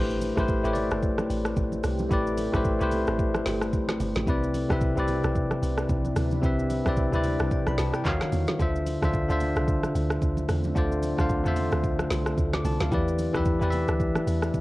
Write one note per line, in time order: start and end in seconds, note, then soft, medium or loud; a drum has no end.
0.00 0.33 A1 loud
0.00 0.27 A3 medium
0.00 4.23 A3 medium
0.00 4.23 C4 medium
0.00 0.28 E4 medium
0.00 0.28 G4 medium
0.00 4.23 G4 medium
0.00 0.29 B4 medium
0.00 0.29 C5 loud
0.00 impact medium
0.11 shaker medium
0.21 open hi-hat medium
0.21 high conga medium
0.21 shaker medium
0.36 0.61 A1 loud
0.36 0.57 A3 medium
0.36 0.58 E4 medium
0.36 0.58 G4 medium
0.36 0.59 B4 medium
0.36 0.59 C5 medium
0.36 kick loud
0.36 cross-stick medium
0.36 high conga medium
0.36 shaker medium
0.48 kick loud
0.48 shaker medium
0.63 0.88 A1 medium
0.63 1.49 A3 medium
0.63 1.50 E4 medium
0.63 1.50 G4 medium
0.63 1.51 B4 medium
0.63 0.71 C#5 medium
0.63 shaker medium
0.73 1.54 D5 loud
0.73 open hi-hat soft
0.73 low conga medium
0.73 shaker medium
0.91 1.15 G1 medium
0.91 cross-stick loud
0.91 shaker soft
1.03 kick loud
1.03 shaker medium
1.18 cross-stick loud
1.18 high conga medium
1.18 shaker medium
1.30 1.54 A1 medium
1.30 open hi-hat medium
1.30 shaker medium
1.45 cross-stick loud
1.45 shaker medium
1.57 1.81 A1 loud
1.57 kick medium
1.57 low conga medium
1.57 shaker medium
1.72 high conga medium
1.72 shaker medium
1.84 2.08 C2 loud
1.84 cross-stick medium
1.84 open hi-hat medium
1.84 low conga medium
1.84 shaker medium
1.99 high conga medium
1.99 shaker medium
2.09 2.49 A1 loud
2.09 2.43 A3 medium
2.09 2.44 E4 medium
2.09 2.44 G4 medium
2.09 2.45 B4 medium
2.09 kick loud
2.09 shaker medium
2.13 2.45 D5 loud
2.27 shaker medium
2.38 open hi-hat medium
2.38 high conga medium
2.38 shaker loud
2.52 2.78 A1 loud
2.52 2.74 A3 medium
2.52 2.74 E4 medium
2.52 2.75 G4 medium
2.52 2.75 B4 medium
2.52 2.76 C5 medium
2.52 kick loud
2.52 cross-stick loud
2.52 high conga medium
2.52 shaker medium
2.65 kick loud
2.65 shaker medium
2.79 3.05 C2 loud
2.79 3.65 A3 medium
2.79 3.66 E4 medium
2.79 3.67 G4 medium
2.79 3.67 B4 medium
2.79 3.67 C5 loud
2.79 shaker medium
2.91 open hi-hat soft
2.91 low conga medium
2.91 shaker medium
3.07 3.42 A1 medium
3.07 cross-stick loud
3.07 shaker soft
3.19 kick loud
3.19 shaker medium
3.35 cross-stick loud
3.35 high conga medium
3.35 shaker medium
3.46 3.75 G1 medium
3.46 snare medium
3.46 open hi-hat medium
3.46 shaker medium
3.62 cross-stick loud
3.62 shaker medium
3.73 3.97 A1 loud
3.73 kick medium
3.73 low conga medium
3.73 shaker medium
3.88 cross-stick medium
3.88 snare medium
3.88 high conga medium
3.88 shaker medium
4.00 4.14 G1 medium
4.00 open hi-hat medium
4.00 low conga medium
4.00 shaker medium
4.15 4.26 A1 medium
4.15 snare medium
4.15 high conga medium
4.15 shaker medium
4.26 4.65 C2 loud
4.26 4.60 C3 medium
4.26 8.02 C3 medium
4.26 8.02 G3 medium
4.26 4.60 C4 medium
4.26 8.02 D4 medium
4.26 8.02 E4 medium
4.26 4.61 E4 medium
4.26 8.02 B4 medium
4.26 4.61 B4 medium
4.26 4.62 D5 loud
4.26 kick loud
4.26 shaker medium
4.43 shaker medium
4.54 open hi-hat medium
4.54 high conga medium
4.54 shaker medium
4.69 4.94 C2 loud
4.69 4.90 C3 medium
4.69 4.90 C4 medium
4.69 4.91 E4 medium
4.69 4.91 B4 medium
4.69 4.92 E5 medium
4.69 kick loud
4.69 cross-stick loud
4.69 high conga medium
4.69 shaker medium
4.81 kick loud
4.81 shaker medium
4.96 5.21 C2 medium
4.96 5.82 C3 medium
4.96 5.82 C4 medium
4.96 5.83 E4 medium
4.96 5.83 B4 medium
4.96 5.84 D5 loud
4.96 shaker medium
5.08 open hi-hat soft
5.08 low conga medium
5.08 shaker medium
5.23 5.48 B1 loud
5.23 cross-stick loud
5.23 shaker soft
5.35 kick loud
5.35 shaker medium
5.51 cross-stick loud
5.51 high conga medium
5.51 shaker soft
5.62 5.86 C2 medium
5.62 open hi-hat medium
5.62 shaker medium
5.78 cross-stick loud
5.78 shaker medium
5.89 6.13 C2 loud
5.89 kick medium
5.89 low conga medium
5.89 shaker medium
6.05 high conga medium
6.05 shaker medium
6.16 6.40 D2 medium
6.16 cross-stick medium
6.16 open hi-hat medium
6.16 low conga medium
6.16 shaker medium
6.31 high conga medium
6.31 shaker medium
6.42 6.81 C2 loud
6.42 6.76 C3 medium
6.42 6.76 C4 medium
6.42 6.77 E4 medium
6.42 6.77 B4 medium
6.42 6.78 E5 loud
6.42 kick loud
6.42 shaker medium
6.59 shaker medium
6.70 open hi-hat medium
6.70 high conga medium
6.70 shaker medium
6.85 7.10 C2 loud
6.85 7.06 C3 medium
6.85 7.07 C4 medium
6.85 7.07 E4 medium
6.85 7.08 B4 medium
6.85 kick medium
6.85 cross-stick loud
6.85 high conga medium
6.85 shaker medium
6.89 7.08 D5 loud
6.97 kick loud
6.97 shaker medium
7.12 7.37 D2 medium
7.12 7.98 C3 medium
7.12 7.98 C4 medium
7.12 7.99 E4 medium
7.12 7.99 B4 medium
7.12 shaker medium
7.16 8.00 D5 loud
7.24 open hi-hat soft
7.24 low conga medium
7.24 shaker medium
7.39 7.50 C2 medium
7.39 cross-stick loud
7.39 shaker soft
7.51 7.67 G5 medium
7.51 kick loud
7.51 shaker medium
7.67 7.77 B1 loud
7.67 7.78 B5 medium
7.67 cross-stick loud
7.67 high conga medium
7.67 shaker soft
7.78 7.92 C2 medium
7.78 7.94 A5 medium
7.78 snare medium
7.78 open hi-hat medium
7.78 shaker medium
7.94 8.20 G5 medium
7.94 cross-stick loud
7.94 shaker medium
8.04 8.19 D#2 loud
8.04 8.50 D#3 medium
8.04 8.50 D#4 medium
8.04 8.51 F#4 medium
8.04 8.51 C#5 medium
8.04 8.52 F5 loud
8.04 kick medium
8.04 clap loud
8.04 low conga medium
8.04 shaker medium
8.21 cross-stick medium
8.21 snare medium
8.21 high conga medium
8.21 shaker medium
8.32 8.46 E2 medium
8.32 open hi-hat medium
8.32 low conga medium
8.32 shaker medium
8.47 snare medium
8.47 high conga medium
8.47 shaker medium
8.58 8.98 D2 loud
8.58 8.92 D3 medium
8.58 12.88 D3 medium
8.58 12.88 A3 medium
8.58 12.88 C4 medium
8.58 8.93 D4 medium
8.58 8.93 F4 medium
8.58 8.94 C5 medium
8.58 12.88 E5 medium
8.58 8.94 E5 loud
8.58 kick loud
8.58 shaker medium
8.76 shaker medium
8.86 open hi-hat medium
8.86 high conga medium
8.86 shaker medium
9.01 9.26 D2 loud
9.01 9.22 D3 medium
9.01 9.23 D4 medium
9.01 9.23 F4 medium
9.01 9.24 C5 medium
9.01 9.24 E5 medium
9.01 kick loud
9.01 cross-stick loud
9.01 high conga medium
9.01 shaker medium
9.13 kick loud
9.13 shaker medium
9.28 9.53 D2 medium
9.28 10.14 D3 medium
9.28 10.15 D4 medium
9.28 10.15 F4 medium
9.28 10.16 C5 medium
9.28 10.16 E5 medium
9.28 shaker medium
9.40 open hi-hat soft
9.40 low conga medium
9.40 shaker medium
9.56 9.80 C2 loud
9.56 cross-stick loud
9.56 shaker soft
9.68 kick loud
9.68 shaker medium
9.83 cross-stick medium
9.83 high conga medium
9.83 shaker medium
9.95 10.19 D2 loud
9.95 open hi-hat medium
9.95 shaker loud
10.10 cross-stick loud
10.10 shaker medium
10.22 10.46 D2 medium
10.22 kick medium
10.22 low conga medium
10.22 shaker medium
10.37 high conga medium
10.37 shaker medium
10.48 10.73 E2 medium
10.48 cross-stick medium
10.48 open hi-hat medium
10.48 low conga medium
10.48 shaker medium
10.64 high conga medium
10.64 shaker medium
10.74 11.14 D2 loud
10.74 11.08 D3 medium
10.74 11.09 D4 medium
10.74 11.09 F4 medium
10.74 11.10 C5 medium
10.74 11.10 D5 loud
10.74 kick loud
10.74 shaker medium
10.92 shaker medium
11.03 open hi-hat medium
11.03 high conga medium
11.03 shaker loud
11.17 11.42 D2 loud
11.17 11.39 D3 medium
11.17 11.39 D4 medium
11.17 11.40 F4 medium
11.17 11.40 C5 medium
11.17 11.41 F5 medium
11.17 kick loud
11.17 cross-stick medium
11.17 high conga medium
11.17 shaker medium
11.29 kick loud
11.29 shaker medium
11.44 11.70 E2 medium
11.44 12.30 D3 medium
11.44 12.31 D4 medium
11.44 12.31 F4 medium
11.44 12.32 C5 medium
11.44 12.32 E5 loud
11.44 shaker medium
11.56 open hi-hat soft
11.56 low conga medium
11.56 shaker medium
11.72 12.07 D2 medium
11.72 cross-stick loud
11.72 shaker soft
11.84 kick loud
11.84 shaker medium
11.99 cross-stick loud
11.99 high conga medium
11.99 shaker medium
12.11 12.35 C2 medium
12.11 snare medium
12.11 open hi-hat medium
12.11 shaker medium
12.26 cross-stick loud
12.26 shaker medium
12.38 12.62 D2 medium
12.38 kick medium
12.38 low conga medium
12.38 shaker medium
12.53 12.65 D6 medium
12.53 cross-stick medium
12.53 snare medium
12.53 high conga medium
12.53 shaker medium
12.65 12.79 C2 loud
12.65 12.80 A5 medium
12.65 open hi-hat medium
12.65 low conga medium
12.65 shaker medium
12.80 12.91 D2 medium
12.80 13.06 F5 medium
12.80 snare medium
12.80 high conga medium
12.80 shaker medium
12.90 13.30 E2 loud
12.90 13.24 E3 medium
12.90 14.61 E3 medium
12.90 14.61 G3 medium
12.90 14.61 D4 medium
12.90 13.25 E4 medium
12.90 13.25 G4 medium
12.90 13.26 B4 medium
12.90 kick loud
12.90 shaker medium
12.94 13.26 D5 loud
13.08 shaker medium
13.19 open hi-hat medium
13.19 high conga medium
13.19 shaker loud
13.33 13.59 E2 loud
13.33 13.55 E3 medium
13.33 13.55 E4 medium
13.33 13.56 G4 medium
13.33 13.56 B4 medium
13.33 13.57 E5 medium
13.33 kick medium
13.33 cross-stick loud
13.33 high conga medium
13.33 shaker medium
13.45 kick loud
13.45 shaker medium
13.60 13.86 E2 medium
13.60 14.46 E3 medium
13.60 14.47 E4 medium
13.60 14.47 G4 medium
13.60 14.48 B4 medium
13.60 shaker medium
13.64 13.68 D5 medium
13.70 14.52 E5 loud
13.70 open hi-hat soft
13.70 low conga medium
13.70 shaker medium
13.88 14.13 D2 loud
13.88 cross-stick loud
13.88 shaker soft
14.00 kick loud
14.00 shaker medium
14.16 cross-stick loud
14.16 high conga medium
14.16 shaker medium
14.27 14.51 E2 loud
14.27 open hi-hat medium
14.27 shaker medium
14.43 cross-stick loud
14.43 shaker medium
14.54 14.61 E2 medium
14.54 kick medium
14.54 low conga medium
14.54 shaker medium